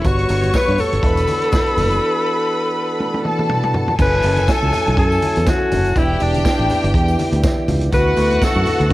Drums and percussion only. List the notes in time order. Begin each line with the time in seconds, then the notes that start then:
0.04 kick, closed hi-hat, tambourine, muted conga
0.19 closed hi-hat
0.29 open hi-hat, tambourine
0.42 closed hi-hat, tambourine, high conga
0.53 kick, snare, tambourine, muted conga
0.68 closed hi-hat
0.78 open hi-hat, tambourine, muted conga, low conga
0.92 closed hi-hat, high conga
1.03 kick, closed hi-hat, muted conga
1.17 closed hi-hat, tambourine
1.28 open hi-hat, tambourine, high conga
1.42 closed hi-hat
1.52 kick, snare, tambourine, muted conga, high conga
1.66 closed hi-hat
1.77 open hi-hat, tambourine, high conga, low conga
1.90 closed hi-hat, tambourine
3.00 high tom
3.14 high tom
3.25 mid tom
3.39 mid tom
3.49 mid tom
3.63 mid tom
3.74 floor tom
3.88 floor tom
3.99 kick, crash, tambourine, muted conga
4.22 open hi-hat, tambourine, muted conga
4.36 closed hi-hat, tambourine, high conga
4.47 kick, snare, closed hi-hat, tambourine, muted conga
4.72 open hi-hat, tambourine, low conga
4.86 closed hi-hat, high conga
4.97 kick, closed hi-hat
5.12 tambourine
5.22 open hi-hat, tambourine, muted conga, high conga
5.36 closed hi-hat, tambourine
5.46 kick, snare, closed hi-hat, tambourine, muted conga, high conga
5.71 open hi-hat, tambourine, muted conga, high conga, low conga
5.84 closed hi-hat, tambourine
5.96 kick, closed hi-hat, tambourine
6.20 open hi-hat, tambourine, muted conga
6.34 closed hi-hat, tambourine, high conga
6.45 kick, snare, closed hi-hat, tambourine
6.70 open hi-hat, tambourine, low conga
6.84 closed hi-hat, high conga
6.94 kick, closed hi-hat
7.08 tambourine
7.19 open hi-hat, tambourine, high conga
7.33 closed hi-hat, tambourine
7.43 kick, snare, closed hi-hat, tambourine, muted conga, high conga
7.68 open hi-hat, tambourine, muted conga, high conga, low conga
7.81 closed hi-hat, tambourine
7.92 kick, closed hi-hat, tambourine, muted conga
8.16 open hi-hat, tambourine, muted conga
8.30 closed hi-hat, high conga
8.42 kick, snare, closed hi-hat, tambourine
8.66 open hi-hat, tambourine, muted conga, low conga
8.80 closed hi-hat, high conga